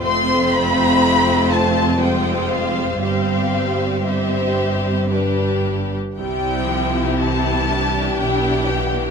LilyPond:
<<
  \new Staff \with { instrumentName = "Violin section" } { \time 3/4 \key c \major \tempo 4 = 59 c'''8 b''4 a''8 g''8 f''8 | f''4 e''4 r4 | g''4 a''4 g''4 | }
  \new Staff \with { instrumentName = "Violin section" } { \time 3/4 \key c \major << { c''2 c''4 | c''4 c''4 b'4 | g'2. | } \\ { f'2 f'4 | g'4 g'4 g'4 | e'2 e'8 b8 | } >> }
  \new Staff \with { instrumentName = "Viola section" } { \time 3/4 \key c \major << { c'2 c'4 | c'4 c'4 d'4 | c'4 c'8 d'4. | } \\ { a2 aes4 | g4 g4 g4 | g8 f8 e4 e4 | } >> }
  \new Staff \with { instrumentName = "Cello section" } { \clef bass \time 3/4 \key c \major f,2. | g,2. | c2 b,4 | }
  \new Staff \with { instrumentName = "Double bass section" } { \clef bass \time 3/4 \key c \major f,,2. | g,,2. | c,2 b,,4 | }
>>